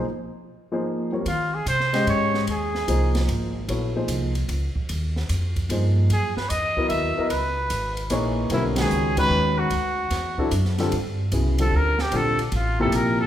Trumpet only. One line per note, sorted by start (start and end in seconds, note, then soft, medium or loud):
1.28 1.56 F4 medium
1.54 1.67 G#4 medium
1.68 2.05 C5 loud
2.09 2.46 C#5 medium
2.51 3.26 G#4 medium
6.13 6.36 G#4 medium
6.37 6.51 B4 medium
6.49 6.88 D#5 loud
6.89 7.27 E5 medium
7.29 8.06 B4 medium
8.53 8.64 E4 medium
8.80 9.16 G#4 medium
9.19 9.60 B4 loud
9.59 10.52 F#4 medium
11.61 11.78 A4 medium
11.76 12.02 A#4 medium
12.01 12.18 G4 medium
12.16 12.40 A4 medium
12.41 12.56 D4 soft
12.54 12.80 F4 medium
12.81 12.97 A4 medium
12.96 13.20 A#4 medium
13.21 13.27 A4 medium